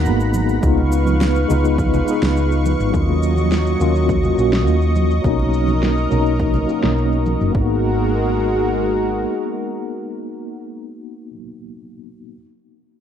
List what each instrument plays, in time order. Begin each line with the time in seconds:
Already playing: tine electric piano A#3 B3 D#4 F#4 G#4, analog synth pad F#5 A#5 B5
0.06 fingered electric bass G#1, shaker
0.20 shaker
0.34 high conga, shaker
0.49 shaker
0.61 fingered electric bass C#2, tine electric piano G#3 B3, analog synth pad B4 F5 C#6, kick, shaker
0.65 tine electric piano D#4 F4
0.78 low conga
0.92 shaker
1.07 high conga, shaker
1.21 snare, shaker
1.36 shaker
1.48 fingered electric bass C#2, tine electric piano G#3 B3 D#4 F4, low conga, shaker
1.65 shaker
1.78 kick, high conga, shaker
1.94 low conga, shaker
2.04 tine electric piano G#3 B3, shaker
2.08 tine electric piano D#4 G#4
2.22 fingered electric bass C#2, snare, shaker
2.37 shaker
2.52 shaker
2.66 high conga, shaker
2.80 fingered electric bass G#1, shaker
2.90 fingered electric bass D#2, tine electric piano F#3 A#3, analog synth pad F#3 D#5, kick, shaker
2.95 tine electric piano C#4 F4
3.09 low conga
3.23 shaker
3.38 high conga, shaker
3.52 snare, shaker
3.67 shaker
3.79 fingered electric bass D#2, tine electric piano F#3 A#3 C#4 F4, low conga, shaker
3.96 shaker
4.09 kick, high conga, shaker
4.23 low conga, shaker
4.35 fingered electric bass A#1, tine electric piano F#3 A#3, shaker
4.39 tine electric piano C#4 F#4
4.53 snare, shaker
4.67 fingered electric bass D#2, shaker
4.82 shaker
4.96 high conga, shaker
5.11 shaker
5.22 fingered electric bass B1, tine electric piano F#3 A#3, analog synth pad A#4, kick, shaker
5.26 tine electric piano C#4 D#4
5.40 low conga
5.54 shaker
5.68 high conga, shaker
5.83 snare, shaker
5.97 shaker
6.10 fingered electric bass B1, tine electric piano F#3 A#3 C#4 D#4, low conga, shaker
6.26 shaker
6.40 kick, high conga, shaker
6.54 low conga, shaker
6.66 tine electric piano F#3 A#3, shaker
6.70 tine electric piano C#4 F#4
6.83 fingered electric bass B1, snare, shaker
6.98 shaker
7.12 shaker
7.26 high conga, shaker
7.41 fingered electric bass F#1, shaker
7.51 tine electric piano A#3 B3
7.55 fingered electric bass G#1, analog synth pad G#3 F#4 A#4, tine electric piano D#4, kick
7.60 tine electric piano F#4